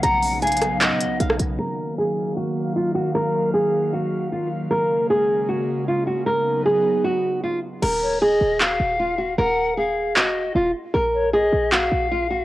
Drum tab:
CC |--------------------------------|--------------------------------|--------------------------------|--------------------------------|
HH |x---o---xxxxx---x---x---x---x---|--------------------------------|--------------------------------|--------------------------------|
CP |----------------x---------------|--------------------------------|--------------------------------|--------------------------------|
SD |------------r-------------r-----|--------------------------------|--------------------------------|--------------------------------|

CC |--------------------------------|x-------------------------------|--------------------------------|--------------------------------|
HH |--------------------------------|--------------------------------|--------------------------------|--------------------------------|
CP |--------------------------------|----------------x---------------|----------------x---------------|----------------x---------------|
SD |--------------------------------|--------------------------------|--------------------------------|--------------------------------|